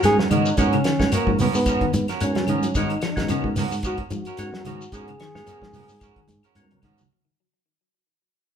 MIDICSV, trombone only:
0, 0, Header, 1, 2, 480
1, 0, Start_track
1, 0, Tempo, 542986
1, 514, Time_signature, 4, 2, 24, 8
1, 7565, End_track
2, 0, Start_track
2, 0, Title_t, "Trombone"
2, 0, Program_c, 0, 57
2, 49, Note_on_c, 0, 68, 111
2, 154, Note_off_c, 0, 68, 0
2, 268, Note_on_c, 0, 63, 85
2, 515, Note_on_c, 0, 61, 100
2, 528, Note_off_c, 0, 63, 0
2, 993, Note_off_c, 0, 61, 0
2, 1003, Note_on_c, 0, 58, 79
2, 1220, Note_off_c, 0, 58, 0
2, 1245, Note_on_c, 0, 59, 83
2, 1301, Note_off_c, 0, 59, 0
2, 1371, Note_on_c, 0, 59, 86
2, 1690, Note_off_c, 0, 59, 0
2, 1727, Note_on_c, 0, 59, 68
2, 1831, Note_off_c, 0, 59, 0
2, 1975, Note_on_c, 0, 61, 88
2, 2447, Note_on_c, 0, 63, 81
2, 2461, Note_off_c, 0, 61, 0
2, 2678, Note_off_c, 0, 63, 0
2, 2697, Note_on_c, 0, 63, 75
2, 3131, Note_off_c, 0, 63, 0
2, 3417, Note_on_c, 0, 66, 87
2, 3519, Note_off_c, 0, 66, 0
2, 3658, Note_on_c, 0, 66, 84
2, 4374, Note_on_c, 0, 68, 102
2, 4387, Note_off_c, 0, 66, 0
2, 5805, Note_off_c, 0, 68, 0
2, 7565, End_track
0, 0, End_of_file